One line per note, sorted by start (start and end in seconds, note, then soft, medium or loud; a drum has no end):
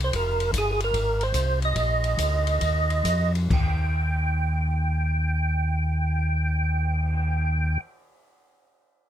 0.00 0.12 C2 medium
0.00 ride soft
0.04 0.14 C5 medium
0.13 0.52 F1 medium
0.13 0.51 A#4 medium
0.13 kick soft
0.13 ride medium
0.40 ride soft
0.53 0.91 G1 medium
0.53 kick soft
0.53 hi-hat pedal soft
0.53 ride medium
0.58 0.71 G#4 medium
0.72 0.81 G#4 medium
0.80 1.23 A#4 medium
0.80 ride soft
0.94 1.32 G#1 medium
0.94 kick soft
0.94 ride soft
1.21 1.60 C5 medium
1.21 ride soft
1.34 1.74 C2 medium
1.34 kick soft
1.34 hi-hat pedal soft
1.34 ride soft
1.62 3.33 D#5 medium
1.62 ride soft
1.76 2.16 A#1 medium
1.76 kick soft
1.76 ride soft
2.04 ride soft
2.17 2.59 D2 medium
2.17 kick soft
2.17 hi-hat pedal medium
2.17 ride medium
2.47 ride soft
2.61 3.03 D#2 medium
2.61 kick soft
2.61 ride soft
2.90 ride soft
3.04 3.48 F2 medium
3.04 kick soft
3.04 hi-hat pedal soft
3.04 ride soft
3.35 ride soft
3.50 7.78 D#2 medium
3.50 7.81 G5 medium
3.50 kick soft
3.50 crash medium
3.81 cymbal swell soft